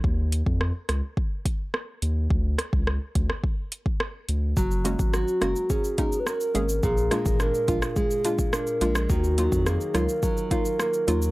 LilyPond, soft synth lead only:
\new Staff \with { instrumentName = "Soft synth lead" } { \time 4/4 \key dis \minor \tempo 4 = 106 r1 | r1 | fis'2 gis'8.~ gis'32 b'32 ais'4 | gis'4 ais'4 gis'4 ais'4 |
fis'4 gis'8 ais'4. ais'4 | }